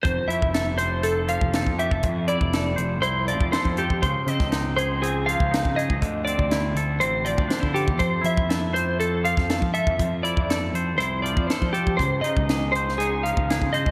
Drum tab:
HH |x-x-x-x-x-x-x-x-|x-x-x-x-x-x-x-x-|x-x-x-x-x-x-x-x-|x-x-x-x-x-x-x-x-|
SD |----o-------o---|----o-------o---|---oo-------o---|----o-------o---|
BD |o--o-------o-o-o|o--o-------o-o-o|o--o-------o-o-o|o--o-------o-o-o|

HH |x-x-x-x-x-x-x-x-|x-x-x-x-x-x-x-x-|x-x-x-x-x-x-x-x-|
SD |----o------oo---|----o-------o---|----o--o----o---|
BD |o--o-------o-o-o|o--o-------o-o-o|o--o-------o-o-o|